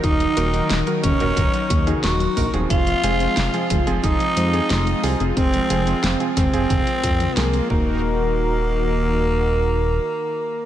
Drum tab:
HH |xxxxxxxxxxxxxxox|xxxxxxxxxxxxxxox|xxxxxxxxxxxxxx--|----------------|
SD |----o-------o---|----o-------o---|----o-o-----o---|----------------|
T2 |------o----o----|------o---------|------o-o--o----|----------------|
BD |o-----o-o-o---o-|o-----o-o-------|o-----o-o-o---o-|----------------|